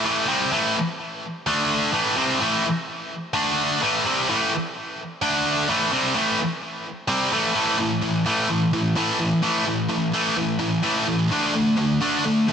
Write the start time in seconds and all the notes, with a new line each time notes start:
0.05 A2 E3 A3
0.28 C3 G3 C4
0.52 A2 E3 A3
1.47 D3 A3 D4
1.93 A2 E3 A3
2.16 C3 G3 C4
2.41 A2 E3 A3
3.34 D3 A3 D4
3.82 A2 E3 A3
4.05 C3 G3 C4
4.29 A2 E3 A3
5.22 D3 A3 D4
5.69 A2 E3 A3
5.92 C3 G3 C4
6.15 A2 E3 A3
7.08 C3 G3 C4
7.32 A2 E3 A3
7.54 A2 E3 A3
7.79 A2 E3
8.02 A2 E3
8.26 A2 E3 A3
8.49 A2 E3
8.73 A2 E3
8.96 A2 E3 A3
9.20 A2 E3
9.43 A2 E3 A3
9.66 A2 E3
9.90 A2 E3
10.14 A2 E3 A3
10.37 A2 E3
10.59 A2 E3
10.83 A2 E3 A3
11.06 A2 E3
11.31 D3 A3 D4
11.53 D3 A3
11.77 D3 A3
12.01 D3 A3 D4
12.25 D3 A3
12.48 D3 A3